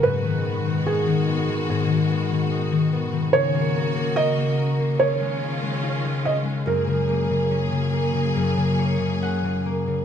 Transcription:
X:1
M:4/4
L:1/16
Q:1/4=72
K:F#
V:1 name="Felt piano"
B4 G4 G6 z2 | c4 d4 c6 d2 | A12 z4 |]
V:2 name="String section"
[B,,G,F]16 | [C,A,F]8 [D,CE]8 | [F,A,G]16 |]
V:3 name="Harp"
z16 | z16 | z8 z2 c2 f4 |]
V:4 name="Harp" clef=bass
G,, D, B, D, D D, B, D, G,, D, B, D, D D, B, D, | C, A, A A, A A, A A, C, G, C G, E G, C G, | F,, C, A, C, C C, A, C, F,, C, A, C, C C, A, C, |]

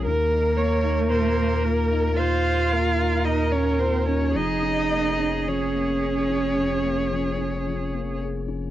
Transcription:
X:1
M:4/4
L:1/16
Q:1/4=55
K:Db
V:1 name="Violin"
B8 f4 e d c d | e4 d8- d2 z2 |]
V:2 name="Viola"
B2 d2 c2 B2 c2 B6 | A12- A2 z2 |]
V:3 name="Cello"
B,8 F4 E D C D | E4 D8- D2 z2 |]
V:4 name="Grand piano"
E,, E B, E B,, B, F E B,, E B, E B,, B, F E | F,, D B, D F, B, A D F,, B, F, D F, B, A D |]
V:5 name="Sub bass" clef=bass
E,,16 | F,,,16 |]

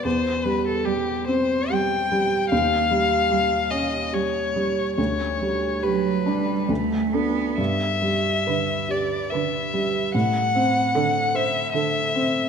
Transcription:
X:1
M:3/4
L:1/16
Q:1/4=72
K:G
V:1 name="Violin"
c2 B A G2 c2 g4 | =f6 _e2 _d4 | ^c4 B4 z4 | e6 d2 e4 |
f6 e2 e4 |]
V:2 name="Grand piano"
E,,2 G,2 G2 C2 G2 G,2 | _E,,2 G,2 G2 _D2 G2 G,2 | D,,2 G,2 G2 D2 D,,2 [DA]2 | G,,2 G,2 B2 G2 B2 G,2 |
A,,2 C2 A2 c2 A2 C2 |]
V:3 name="Cello" clef=bass
z4 G,4 G,4 | z4 G,4 G,4 | z4 F,2 G,2 A,2 B,2 | z4 D,4 D,4 |
z4 D,4 D,4 |]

